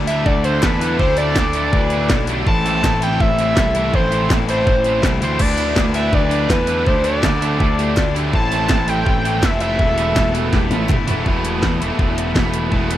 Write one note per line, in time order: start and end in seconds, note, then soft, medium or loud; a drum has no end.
0.00 0.25 D2 medium
0.00 0.60 D3 medium
0.00 1.74 A4 loud
0.07 0.33 D3 medium
0.07 0.33 A3 medium
0.07 0.62 A3 medium
0.07 0.62 D4 medium
0.07 0.33 D4 medium
0.07 0.64 E4 medium
0.07 0.32 E4 medium
0.07 0.27 E5 loud
0.07 open hi-hat medium
0.26 0.61 D2 medium
0.26 0.44 D5 loud
0.26 kick loud
0.44 0.69 D3 medium
0.44 0.69 A3 medium
0.44 0.69 D4 medium
0.44 0.69 E4 medium
0.44 0.62 C5 medium
0.44 open hi-hat medium
0.61 0.98 E2 loud
0.61 0.96 D3 medium
0.61 0.83 A3 medium
0.61 0.81 D4 medium
0.61 0.80 E4 medium
0.61 0.98 B4 loud
0.61 kick loud
0.61 snare loud
0.61 clap medium
0.80 1.06 D3 medium
0.80 1.06 A3 medium
0.80 0.98 A3 medium
0.80 1.06 D4 medium
0.80 0.99 D4 medium
0.80 1.00 E4 medium
0.80 1.06 E4 medium
0.80 open hi-hat medium
0.97 1.35 D2 loud
0.97 1.34 D3 medium
0.97 1.36 A3 loud
0.97 1.36 D4 loud
0.97 1.38 E4 loud
0.97 1.17 C5 loud
0.97 kick loud
1.17 1.43 D3 medium
1.17 1.43 A3 medium
1.17 1.43 D4 medium
1.17 1.43 E4 loud
1.17 2.25 D5 loud
1.17 open hi-hat medium
1.35 1.71 D2 medium
1.35 1.73 D3 loud
1.35 1.57 A3 loud
1.35 1.55 D4 loud
1.35 1.54 E4 loud
1.35 kick loud
1.35 snare medium
1.35 clap loud
1.53 1.80 D3 medium
1.53 1.80 A3 medium
1.53 1.80 D4 medium
1.53 2.11 D4 medium
1.53 2.13 E4 medium
1.53 1.79 E4 medium
1.53 open hi-hat medium
1.58 2.11 A3 medium
1.72 2.08 D2 loud
1.72 2.12 B4 loud
1.72 kick loud
1.90 2.17 D3 medium
1.90 2.17 A3 medium
1.90 2.17 D4 medium
1.90 2.17 E4 loud
1.90 open hi-hat medium
2.09 2.45 B1 loud
2.09 2.46 D3 medium
2.09 2.31 A3 medium
2.09 2.28 D4 medium
2.09 2.28 E4 medium
2.09 2.30 A4 loud
2.09 kick loud
2.09 snare loud
2.09 clap loud
2.27 2.48 D3 medium
2.27 2.48 A3 medium
2.27 2.47 A3 medium
2.27 2.47 D4 medium
2.27 2.48 D4 medium
2.27 2.48 E4 medium
2.27 2.49 G4 medium
2.27 open hi-hat medium
2.46 2.82 A1 medium
2.46 2.83 A2 medium
2.46 2.83 E3 medium
2.46 2.84 A3 medium
2.46 2.85 C4 medium
2.46 2.85 E4 medium
2.46 4.95 A4 loud
2.46 2.99 A5 loud
2.46 kick loud
2.65 2.90 E3 medium
2.65 2.90 A3 medium
2.65 2.90 C4 medium
2.65 2.90 E4 loud
2.65 open hi-hat medium
2.83 3.18 A1 loud
2.83 3.92 A2 loud
2.83 3.55 E3 loud
2.83 3.03 A3 loud
2.83 3.02 C4 loud
2.83 3.00 E4 loud
2.83 kick loud
2.83 snare loud
2.83 clap loud
3.01 3.27 E3 medium
3.01 3.27 A3 medium
3.01 3.57 A3 medium
3.01 3.57 C4 medium
3.01 3.26 C4 medium
3.01 3.58 E4 medium
3.01 3.26 E4 medium
3.01 3.22 G5 loud
3.01 open hi-hat medium
3.20 3.55 A1 loud
3.20 3.96 E5 loud
3.20 kick loud
3.39 3.64 E3 medium
3.39 3.64 A3 medium
3.39 3.63 C4 medium
3.39 3.63 E4 medium
3.39 open hi-hat medium
3.56 3.92 C2 medium
3.56 3.93 E3 medium
3.56 3.77 A3 medium
3.56 3.75 C4 medium
3.56 3.74 E4 medium
3.56 kick loud
3.56 snare loud
3.56 clap loud
3.75 4.00 E3 medium
3.75 4.00 A3 medium
3.75 3.94 A3 medium
3.75 4.00 C4 medium
3.75 3.94 C4 medium
3.75 3.95 E4 medium
3.75 3.99 E4 medium
3.75 open hi-hat medium
3.92 4.29 A1 loud
3.92 4.28 A2 medium
3.92 4.30 E3 medium
3.92 4.31 A3 loud
3.92 4.31 C4 medium
3.92 4.32 E4 medium
3.92 4.31 C5 loud
3.92 kick loud
4.11 4.36 E3 medium
4.11 4.36 A3 medium
4.11 4.36 C4 loud
4.11 4.36 E4 medium
4.11 open hi-hat medium
4.29 4.65 A1 medium
4.29 4.67 A2 medium
4.29 5.02 E3 loud
4.29 4.50 A3 medium
4.29 4.48 C4 medium
4.29 4.47 E4 medium
4.29 kick loud
4.29 snare loud
4.29 clap medium
4.47 4.74 E3 medium
4.47 4.73 A3 medium
4.47 5.03 A3 medium
4.47 4.73 C4 medium
4.47 5.03 C4 medium
4.47 5.05 E4 medium
4.47 4.73 E4 medium
4.47 5.01 C5 loud
4.47 open hi-hat medium
4.66 5.02 A1 loud
4.66 kick loud
4.84 5.10 E3 medium
4.84 5.10 A3 medium
4.84 5.10 C4 medium
4.84 5.10 E4 medium
4.84 open hi-hat medium
5.02 5.20 C2 medium
5.02 5.39 E3 medium
5.02 5.23 A3 medium
5.02 5.21 C4 medium
5.02 5.20 E4 medium
5.02 kick loud
5.02 snare loud
5.02 clap loud
5.20 5.38 D2 medium
5.20 5.41 E3 medium
5.20 5.40 A3 medium
5.20 5.41 A3 medium
5.20 5.40 C4 medium
5.20 5.41 C4 medium
5.20 5.42 E4 medium
5.20 5.41 E4 medium
5.20 5.43 C5 medium
5.20 open hi-hat medium
5.38 5.75 D2 medium
5.38 5.75 D3 medium
5.38 5.76 A3 medium
5.38 5.77 D4 loud
5.38 6.88 B4 loud
5.38 5.78 D5 loud
5.38 kick loud
5.38 crash loud
5.42 5.78 E4 loud
5.58 5.83 D3 medium
5.58 5.83 A3 medium
5.58 5.83 D4 medium
5.58 5.83 E4 medium
5.58 open hi-hat medium
5.76 6.11 D2 medium
5.76 6.49 D3 loud
5.76 5.97 A3 loud
5.76 5.95 D4 loud
5.76 5.93 E4 loud
5.76 kick medium
5.76 snare loud
5.76 clap medium
5.94 6.20 D3 medium
5.94 6.20 A3 medium
5.94 6.50 A3 medium
5.94 6.50 D4 medium
5.94 6.20 D4 medium
5.94 6.52 E4 medium
5.94 6.19 E4 medium
5.94 6.15 E5 loud
5.94 open hi-hat medium
6.12 6.48 D2 medium
6.12 6.51 D5 medium
6.12 kick loud
6.30 6.56 D3 medium
6.30 6.56 A3 medium
6.30 6.55 D4 medium
6.30 6.55 E4 medium
6.30 open hi-hat medium
6.49 6.85 E2 medium
6.49 6.85 D3 medium
6.49 6.71 A3 medium
6.49 6.69 D4 medium
6.49 6.68 E4 medium
6.49 6.88 B4 loud
6.49 kick loud
6.49 snare loud
6.49 clap loud
6.67 6.93 D3 medium
6.67 6.92 A3 medium
6.67 6.92 D4 medium
6.67 6.87 D4 medium
6.67 6.92 E4 medium
6.67 6.89 E4 medium
6.67 open hi-hat medium
6.72 6.87 A3 medium
6.86 7.22 D2 loud
6.86 7.21 D3 medium
6.86 7.23 A3 medium
6.86 7.23 D4 medium
6.86 7.25 E4 loud
6.86 7.59 A4 loud
6.86 7.06 C5 loud
6.86 kick loud
7.04 7.29 D3 medium
7.04 7.29 A3 medium
7.04 7.29 D4 medium
7.04 7.29 E4 medium
7.04 8.15 D5 loud
7.04 open hi-hat medium
7.22 7.58 D2 medium
7.22 7.60 D3 loud
7.22 7.43 A3 medium
7.22 7.41 D4 loud
7.22 7.40 E4 loud
7.22 kick medium
7.22 snare loud
7.22 clap medium
7.41 7.66 D3 medium
7.41 7.66 A3 medium
7.41 7.96 A3 medium
7.41 7.96 D4 medium
7.41 7.66 D4 medium
7.41 7.98 E4 medium
7.41 7.66 E4 medium
7.41 open hi-hat medium
7.60 7.95 D2 loud
7.60 7.79 A4 loud
7.60 kick loud
7.78 8.03 D3 medium
7.78 8.03 A3 medium
7.78 8.03 D4 medium
7.78 8.03 E4 medium
7.78 7.98 G4 loud
7.78 open hi-hat medium
7.95 8.32 D2 medium
7.95 8.32 D3 medium
7.95 8.17 A3 medium
7.95 8.15 D4 medium
7.95 8.14 E4 medium
7.95 8.13 F4 medium
7.95 kick loud
7.95 snare loud
7.95 clap loud
8.14 8.34 D3 medium
8.14 8.34 A3 medium
8.14 8.34 D4 medium
8.14 8.33 D4 medium
8.14 8.36 E4 medium
8.14 8.34 E4 medium
8.14 8.32 G4 loud
8.14 open hi-hat medium
8.33 8.68 A1 medium
8.33 8.68 A2 medium
8.33 8.70 E3 loud
8.33 8.70 A3 loud
8.33 8.70 C4 medium
8.33 8.71 E4 medium
8.33 9.49 A4 loud
8.33 8.90 A5 loud
8.33 kick loud
8.52 8.76 E3 medium
8.52 8.77 A3 medium
8.52 8.76 C4 loud
8.52 8.76 E4 loud
8.52 open hi-hat medium
8.69 9.04 A1 medium
8.69 9.06 A2 medium
8.69 9.42 E3 loud
8.69 8.89 A3 loud
8.69 8.88 C4 loud
8.69 8.87 E4 loud
8.69 kick loud
8.69 snare loud
8.69 clap loud
8.87 9.13 E3 medium
8.87 9.12 A3 medium
8.87 9.43 A3 medium
8.87 9.13 C4 medium
8.87 9.43 C4 medium
8.87 9.45 E4 medium
8.87 9.12 E4 medium
8.87 9.46 G5 loud
8.87 open hi-hat medium
9.06 9.41 A1 loud
9.06 kick loud
9.25 9.49 E3 medium
9.25 9.49 A3 medium
9.25 9.49 C4 medium
9.25 9.49 E4 medium
9.25 open hi-hat medium
9.42 9.78 F1 loud
9.42 9.80 E3 medium
9.42 9.63 A3 medium
9.42 9.61 C4 medium
9.42 9.60 E4 medium
9.42 9.61 E5 loud
9.42 kick loud
9.42 snare loud
9.42 clap loud
9.60 9.80 E3 medium
9.60 9.80 A3 medium
9.60 9.81 A3 medium
9.60 9.80 C4 medium
9.60 9.79 C4 medium
9.60 9.81 E4 medium
9.60 9.80 E4 medium
9.60 10.31 E5 loud
9.60 open hi-hat medium
9.79 10.14 E1 loud
9.79 10.14 E2 medium
9.79 10.15 B2 medium
9.79 10.16 E3 loud
9.79 10.16 A3 loud
9.79 10.17 B3 loud
9.79 10.18 E4 loud
9.79 10.49 A4 loud
9.79 kick loud
9.98 10.22 E3 medium
9.98 10.22 A3 medium
9.98 10.22 B3 medium
9.98 10.22 E4 medium
9.98 open hi-hat medium
10.15 10.51 E1 medium
10.15 10.52 E2 medium
10.15 10.53 B2 medium
10.15 10.36 E3 loud
10.15 10.34 A3 loud
10.15 10.33 B3 loud
10.15 10.32 E4 loud
10.15 kick loud
10.15 snare medium
10.15 clap loud
10.33 10.59 E3 medium
10.33 10.87 E3 medium
10.33 10.58 A3 medium
10.33 10.88 A3 medium
10.33 10.58 B3 medium
10.33 10.89 B3 medium
10.33 10.90 E4 medium
10.33 10.58 E4 medium
10.33 open hi-hat medium
10.53 10.70 E1 loud
10.53 10.70 G4 loud
10.53 kick loud
10.53 snare medium
10.70 10.87 A1 medium
10.70 10.95 E3 medium
10.70 10.95 A3 medium
10.70 10.95 B3 loud
10.70 10.95 E4 loud
10.70 10.88 F4 medium
10.70 open hi-hat medium
10.70 high tom medium
10.88 11.06 G1 medium
10.88 11.09 E3 medium
10.88 11.08 A3 medium
10.88 11.07 B3 medium
10.88 11.24 E4 medium
10.88 11.06 E4 medium
10.88 kick loud
10.88 clap medium
10.88 mid tom loud
11.07 11.25 E1 medium
11.07 11.26 E3 medium
11.07 11.25 E3 medium
11.07 11.26 A3 medium
11.07 11.26 B3 medium
11.07 11.25 B3 medium
11.07 11.25 E4 medium
11.07 11.26 E4 medium
11.07 floor tom medium
11.07 open hi-hat medium
11.25 11.61 E1 medium
11.25 11.82 E2 medium
11.25 11.80 B2 medium
11.25 11.82 E3 medium
11.25 11.83 E3 medium
11.25 11.82 A3 medium
11.25 11.81 A3 medium
11.25 11.80 B3 medium
11.25 11.82 B3 loud
11.25 11.79 E4 medium
11.25 11.81 E4 loud
11.25 kick medium
11.45 closed hi-hat medium
11.63 11.80 E2 medium
11.63 kick medium
11.63 snare medium
11.80 11.90 E1 medium
11.80 12.69 E2 medium
11.80 12.70 B2 medium
11.80 12.71 E3 medium
11.80 12.36 E3 medium
11.80 12.72 A3 medium
11.80 12.37 A3 medium
11.80 12.71 B3 medium
11.80 12.35 B3 medium
11.80 12.73 E4 medium
11.80 12.38 E4 medium
11.80 closed hi-hat medium
11.99 12.34 E1 medium
11.99 kick loud
12.18 closed hi-hat medium
12.35 12.70 E1 loud
12.35 12.72 E3 medium
12.35 12.73 A3 medium
12.35 12.72 B3 medium
12.35 12.74 E4 medium
12.35 kick loud
12.35 snare loud
12.54 closed hi-hat medium
12.70 12.97 E1 medium
12.70 12.97 E2 medium
12.70 12.97 B2 medium
12.70 12.97 E3 medium
12.70 12.97 A3 medium
12.70 12.97 B3 loud
12.70 12.97 E4 medium
12.70 kick loud
12.75 12.97 E4 medium
12.91 closed hi-hat loud